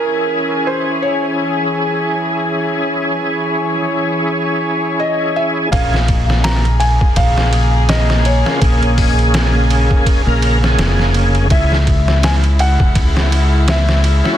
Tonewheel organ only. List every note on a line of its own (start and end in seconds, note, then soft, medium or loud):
0.00 5.68 C#4 medium
0.00 5.69 E4 medium
0.00 5.70 G#4 medium
5.72 5.99 A#3 medium
5.72 5.99 C#4 medium
5.72 6.00 G#4 medium
8.46 8.59 A#3 medium
8.46 8.60 C#4 medium
8.46 8.60 F4 medium
8.60 10.21 A#3 medium
8.60 10.22 C#4 medium
8.60 10.23 G#4 medium
10.27 10.58 A#3 medium
10.27 10.58 C#4 medium
10.27 10.59 A#4 medium
10.61 11.46 A#3 medium
10.61 11.47 C#4 medium
10.61 11.48 G#4 loud
11.50 11.77 C#4 medium
11.50 11.77 E4 medium
11.50 11.78 G#4 loud
14.24 14.37 C#4 medium
14.24 14.37 E4 medium
14.24 14.37 F#4 medium